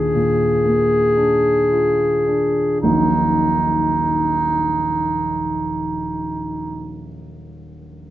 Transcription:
Already playing: grand piano D#2 D4 F4, clarinet G#4
0.15 grand piano A#2
0.65 grand piano A#3
1.17 grand piano D4
1.71 grand piano F4
2.27 grand piano D4
2.81 grand piano D#1 A#1 F#3 A#3 D#4 F#4, clarinet D#4

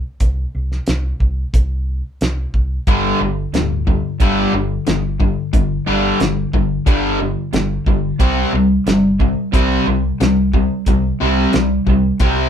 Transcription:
0.20 fingered electric bass C2, kick, closed hi-hat
0.55 fingered electric bass C2
0.72 snare
0.87 fingered electric bass C2, snare, closed hi-hat
1.20 fingered electric bass C2, kick
1.53 fingered electric bass C2, kick, closed hi-hat
2.21 fingered electric bass C2, snare, closed hi-hat
2.54 fingered electric bass C2, kick
2.87 fingered electric bass G1, overdriven electric guitar G2 D3 G3, kick, closed hi-hat
3.20 fingered electric bass G1, overdriven electric guitar G2 D3
3.52 fingered electric bass D1, overdriven electric guitar G2 D3, snare, closed hi-hat
3.87 overdriven electric guitar G2 D3, kick
4.20 fingered electric bass G1, overdriven electric guitar G2 D3 G3, kick, closed hi-hat
4.53 fingered electric bass G1, overdriven electric guitar G2 D3
4.87 fingered electric bass G1, overdriven electric guitar G2 D3, snare, closed hi-hat
5.20 overdriven electric guitar G2 D3, kick
5.53 fingered electric bass G1, overdriven electric guitar G2 D3, kick, closed hi-hat
5.87 fingered electric bass G1, overdriven electric guitar G2 D3 G3
6.20 fingered electric bass G1, overdriven electric guitar G2 D3, snare, closed hi-hat
6.53 fingered electric bass G1, overdriven electric guitar G2 D3, kick
6.86 fingered electric bass G1, overdriven electric guitar G2 D3 G3, kick, closed hi-hat
7.20 overdriven electric guitar G2 D3
7.53 fingered electric bass G1, overdriven electric guitar G2 D3, snare, closed hi-hat
7.86 fingered electric bass G1, overdriven electric guitar G2 D3, kick
8.19 fingered electric bass C2, overdriven electric guitar C3 G3 C4, kick, closed hi-hat
8.53 fingered electric bass C2, overdriven electric guitar C3 G3
8.86 fingered electric bass G1, overdriven electric guitar C3 G3, snare, closed hi-hat
9.20 overdriven electric guitar C3 G3, kick
9.53 fingered electric bass C2, overdriven electric guitar C3 G3 C4, kick, closed hi-hat
9.86 fingered electric bass C2, overdriven electric guitar C3 G3
10.20 fingered electric bass C2, overdriven electric guitar C3 G3, snare, closed hi-hat
10.53 overdriven electric guitar C3 G3, kick
10.86 fingered electric bass C2, overdriven electric guitar C3 G3, kick, closed hi-hat
11.20 fingered electric bass C2, overdriven electric guitar C3 G3 C4
11.53 fingered electric bass C2, overdriven electric guitar C3 G3, snare, closed hi-hat
11.86 fingered electric bass C2, overdriven electric guitar C3 G3, kick
12.20 fingered electric bass C2, overdriven electric guitar C3 G3 C4, kick, closed hi-hat

